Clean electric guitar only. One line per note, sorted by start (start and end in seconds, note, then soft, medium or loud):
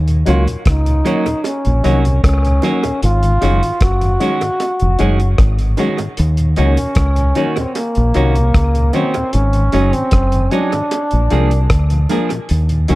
0.26 0.46 F#3 medium
0.26 0.47 A#3 medium
0.26 0.47 C#4 medium
0.26 0.47 F#4 medium
1.05 1.25 F#3 medium
1.05 1.25 A#3 loud
1.05 1.25 C#4 loud
1.05 1.26 F#4 loud
1.84 2.04 F#3 medium
1.84 2.04 A#3 medium
1.84 2.04 C#4 medium
1.84 2.05 F#4 loud
2.63 2.83 F#3 medium
2.63 2.83 A#3 medium
2.63 2.83 C#4 medium
2.63 2.83 F#4 loud
3.41 3.61 D#3 medium
3.41 3.62 G#3 medium
3.41 3.62 C#4 medium
3.41 3.62 F#4 medium
4.20 4.40 D#3 medium
4.20 4.40 G#3 medium
4.20 4.41 C#4 loud
4.20 4.41 F#4 loud
4.99 5.19 D#3 medium
4.99 5.19 G#3 medium
4.99 5.20 C#4 medium
4.99 5.20 F#4 medium
5.78 5.98 D#3 medium
5.78 5.98 G#3 loud
5.78 5.99 C#4 medium
5.78 5.99 F#4 medium
6.57 6.77 D#3 medium
6.57 6.77 A#3 medium
6.57 6.77 C#4 medium
6.57 6.78 F#4 medium
7.35 7.55 D#3 medium
7.35 7.56 A#3 medium
7.35 7.56 C#4 loud
7.35 7.56 F#4 medium
8.15 8.34 D#3 medium
8.15 8.35 A#3 medium
8.15 8.35 C#4 medium
8.15 8.36 F#4 medium
8.93 9.13 D#3 medium
8.93 9.14 A#3 medium
8.93 9.14 C#4 loud
8.93 9.14 F#4 medium
9.73 9.93 F#3 medium
9.73 9.93 C#4 loud
9.73 9.93 D#4 medium
9.73 9.93 G#4 medium
10.51 10.71 F#3 loud
10.51 10.72 C#4 medium
10.51 10.72 D#4 loud
10.51 10.72 G#4 loud
11.31 11.51 F3 medium
11.31 11.51 A#3 loud
11.31 11.51 D4 medium
11.31 11.51 G#4 medium
12.10 12.30 F3 medium
12.10 12.30 A#3 medium
12.10 12.30 D4 medium
12.10 12.30 G#4 medium
12.89 12.95 F#3 medium
12.89 12.95 A#3 medium
12.89 12.95 C#4 medium
12.89 12.95 F#4 medium